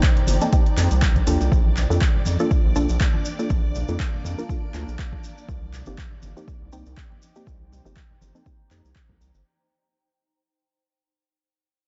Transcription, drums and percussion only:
0.03 kick, clap, closed hi-hat, maracas
0.16 closed hi-hat, low conga
0.27 open hi-hat, high bongo, high conga, maracas
0.41 closed hi-hat, maracas
0.53 kick, closed hi-hat, maracas
0.66 closed hi-hat
0.77 clap, open hi-hat, high bongo, high conga, maracas
0.91 closed hi-hat, maracas
1.02 kick, clap, closed hi-hat, maracas
1.16 kick, closed hi-hat, high conga
1.27 open hi-hat, maracas
1.41 closed hi-hat, high bongo, maracas
1.52 kick, high conga, maracas
1.77 clap, low conga, maracas
1.90 high conga, maracas
2.01 kick, clap, maracas
2.15 low conga
2.26 high conga, maracas
2.39 maracas
2.51 kick, maracas
2.76 high conga, low conga, maracas
2.89 maracas
3.01 kick, clap, maracas
3.14 high conga
3.25 maracas
3.39 maracas
3.50 kick, high conga, maracas
3.75 low conga, maracas
3.88 high conga, maracas
4.00 kick, clap, maracas
4.14 low conga
4.24 high conga, maracas
4.39 maracas
4.49 kick, maracas
4.74 clap, high conga, maracas
4.88 maracas
4.99 kick, clap, maracas
5.13 kick, high conga
5.24 maracas
5.38 maracas
5.49 kick, high conga, maracas
5.73 clap, low conga, maracas
5.86 high conga, maracas
5.98 kick, clap, maracas
6.11 low conga
6.22 high conga, maracas
6.37 maracas
6.48 kick, maracas
6.72 high conga, low conga, maracas
6.86 maracas
6.97 kick, clap, maracas
7.12 high conga
7.22 maracas
7.35 maracas
7.46 kick, high conga, maracas
7.72 low conga, maracas
7.84 high conga, maracas
7.95 kick, clap, maracas
8.10 low conga
8.21 high conga, maracas
8.35 maracas
8.46 kick, maracas
8.71 clap, high conga, maracas
8.85 maracas
8.96 kick, clap, maracas
9.09 kick, high conga
9.21 maracas
9.34 maracas

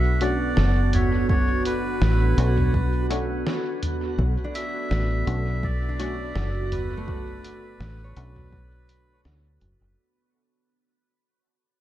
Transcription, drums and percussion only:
0.21 closed hi-hat
0.57 snare
0.93 closed hi-hat, mid tom
1.29 kick
1.65 closed hi-hat
2.02 snare
2.38 closed hi-hat
2.58 mid tom
2.74 kick
3.11 closed hi-hat
3.47 snare
3.83 closed hi-hat, mid tom
4.19 kick
4.55 closed hi-hat
4.91 snare
5.27 closed hi-hat
5.63 kick
6.00 closed hi-hat
6.36 snare
6.72 closed hi-hat, mid tom
7.08 kick
7.44 closed hi-hat
7.81 snare
8.17 closed hi-hat
8.36 mid tom
8.53 kick
8.89 closed hi-hat
9.25 snare
9.61 closed hi-hat, mid tom

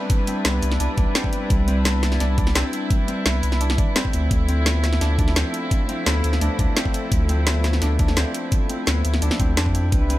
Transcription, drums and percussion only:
0.10 kick, closed hi-hat
0.27 closed hi-hat
0.45 snare, closed hi-hat
0.63 closed hi-hat
0.72 snare
0.80 closed hi-hat
0.98 kick, closed hi-hat
1.15 snare, closed hi-hat
1.24 kick
1.33 closed hi-hat
1.50 kick, closed hi-hat
1.68 closed hi-hat
1.85 snare, closed hi-hat
2.03 snare, closed hi-hat
2.12 snare
2.20 snare, closed hi-hat
2.38 kick, closed hi-hat
2.47 snare
2.55 snare, closed hi-hat
2.73 closed hi-hat
2.90 kick, closed hi-hat
3.08 closed hi-hat
3.26 snare, closed hi-hat
3.43 closed hi-hat
3.52 snare
3.61 closed hi-hat
3.70 snare
3.78 kick, closed hi-hat
3.96 snare, closed hi-hat
4.05 kick
4.13 closed hi-hat
4.31 kick, closed hi-hat
4.49 closed hi-hat
4.66 snare, closed hi-hat
4.84 snare, closed hi-hat
4.93 snare
5.01 snare, closed hi-hat
5.19 kick, closed hi-hat
5.28 snare
5.36 snare, closed hi-hat
5.54 closed hi-hat
5.71 kick, closed hi-hat
5.89 closed hi-hat
6.06 snare, closed hi-hat
6.24 closed hi-hat
6.33 snare
6.41 closed hi-hat
6.59 kick, closed hi-hat
6.77 snare, closed hi-hat
6.85 kick
6.94 closed hi-hat
7.12 kick, closed hi-hat
7.29 closed hi-hat
7.47 snare, closed hi-hat
7.64 snare, closed hi-hat
7.73 snare
7.82 snare, closed hi-hat
7.99 kick, closed hi-hat
8.08 snare
8.17 snare, closed hi-hat
8.34 closed hi-hat
8.52 kick, closed hi-hat
8.70 closed hi-hat
8.87 snare, closed hi-hat
9.05 closed hi-hat
9.14 snare
9.22 closed hi-hat
9.31 snare
9.40 kick, closed hi-hat
9.57 snare, closed hi-hat
9.66 kick
9.75 closed hi-hat
9.92 kick, closed hi-hat
10.10 closed hi-hat

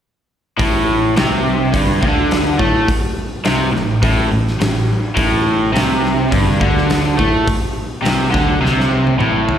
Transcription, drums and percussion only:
0.59 kick, open hi-hat
1.16 snare, open hi-hat
1.74 kick, open hi-hat
2.03 kick
2.31 snare, open hi-hat
2.59 kick
2.88 kick, open hi-hat
3.45 snare, open hi-hat
3.75 snare
4.03 kick, open hi-hat
4.47 snare
4.61 snare, open hi-hat
5.17 kick, open hi-hat
5.76 snare, open hi-hat
6.05 snare
6.32 kick, open hi-hat
6.61 kick
6.77 snare
6.90 snare, open hi-hat
7.19 kick
7.47 kick, open hi-hat
8.05 snare, open hi-hat
8.34 kick, snare
8.65 snare
8.80 snare
9.07 high tom
9.20 mid tom
9.49 floor tom

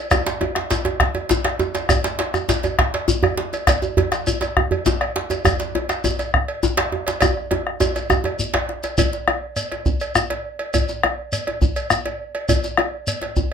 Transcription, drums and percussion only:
0.11 bombo rim, bombo low, cowbell, djembe tone, djembe bass, shekere
0.26 djembe slap, shekere
0.41 cowbell, djembe slap, djembe tone
0.55 bombo rim, djembe slap
0.71 cowbell, djembe slap, djembe bass, shekere
0.85 bombo rim, cowbell, djembe slap, djembe tone
1.00 bombo rim, bombo low, djembe slap
1.15 cowbell, djembe slap, djembe tone
1.29 djembe slap, shekere
1.31 djembe slap, djembe tone, djembe bass
1.44 bombo rim, cowbell, djembe slap
1.59 djembe slap, djembe tone, shekere
1.75 cowbell, djembe slap, shekere
1.89 bombo rim, bombo low, cowbell, djembe slap, djembe tone, djembe bass, shekere
2.04 djembe slap, shekere
2.19 cowbell, djembe slap
2.34 bombo rim, djembe slap, djembe tone, shekere
2.49 cowbell, djembe slap, djembe bass, shekere
2.63 bombo rim, cowbell, djembe slap, djembe tone, shekere
2.79 bombo rim, bombo low, djembe slap
2.94 cowbell, djembe slap
3.08 djembe slap, djembe tone, djembe bass, shekere
3.23 bombo rim, cowbell, djembe slap, djembe bass
3.37 bombo rim, djembe slap
3.53 cowbell, djembe slap, shekere
3.67 bombo rim, bombo low, cowbell, djembe slap, djembe bass, shekere
3.82 djembe tone, shekere
3.97 cowbell, djembe slap, djembe tone, djembe bass
4.12 bombo rim, djembe slap, shekere
4.27 cowbell, djembe bass, shekere
4.41 bombo rim, cowbell, djembe slap, shekere
4.57 bombo rim, bombo low, djembe tone
4.71 cowbell, djembe bass
4.86 djembe slap, djembe tone, djembe bass, shekere
5.01 bombo rim, cowbell, djembe slap
5.16 bombo rim, djembe slap
5.30 cowbell, djembe slap, djembe tone, shekere
5.45 bombo rim, bombo low, cowbell, djembe slap, djembe bass, shekere
5.60 djembe slap, shekere
5.75 cowbell, djembe slap, djembe tone
5.89 bombo rim, djembe slap, shekere
6.04 cowbell, djembe tone, djembe bass, shekere
6.19 bombo rim, cowbell, djembe slap, shekere
6.34 bombo rim, bombo low, djembe slap
6.48 cowbell
6.63 djembe slap, djembe tone, djembe bass, shekere
6.77 bombo rim, cowbell, djembe slap
6.92 bombo rim, djembe slap, djembe tone
7.07 cowbell, djembe slap, shekere
7.21 bombo rim, bombo low, cowbell, djembe tone, djembe bass, shekere
7.37 bombo rim
7.51 bombo rim, cowbell, djembe slap, djembe tone
7.67 bombo rim, djembe slap
7.80 cowbell, djembe slap, djembe tone, djembe bass, shekere
7.96 cowbell, djembe slap, shekere
8.10 bombo rim, bombo low, djembe tone, shekere
8.24 bombo rim, cowbell, djembe tone
8.39 djembe bass, shekere
8.54 bombo rim, cowbell, djembe slap, djembe bass
8.69 bombo rim, djembe slap
8.83 cowbell, djembe slap, shekere
8.98 bombo rim, bombo low, cowbell, djembe bass, shekere
9.12 djembe slap, shekere
9.28 bombo rim, cowbell, djembe slap, djembe tone
9.56 cowbell, shekere
9.72 cowbell, djembe slap
9.86 bombo low, djembe slap, djembe bass, shekere
10.00 cowbell, shekere
10.15 bombo rim, djembe slap, djembe tone, shekere
10.30 cowbell, djembe slap
10.59 cowbell, djembe slap
10.74 bombo rim, bombo low, cowbell, djembe bass, shekere
10.89 djembe slap, shekere
11.03 bombo rim, cowbell, djembe slap, djembe tone
11.32 cowbell, shekere
11.47 cowbell, djembe slap
11.62 bombo low, djembe slap, djembe bass, shekere
11.76 cowbell, shekere
11.90 bombo rim, djembe slap, djembe tone, shekere
12.05 cowbell, djembe slap
12.35 cowbell, djembe slap
12.49 bombo rim, bombo low, cowbell, djembe bass, shekere
12.64 djembe slap, shekere
12.77 bombo rim, cowbell, djembe slap, djembe tone
13.07 cowbell, shekere
13.22 cowbell, djembe slap
13.36 bombo low, djembe slap, djembe bass, shekere

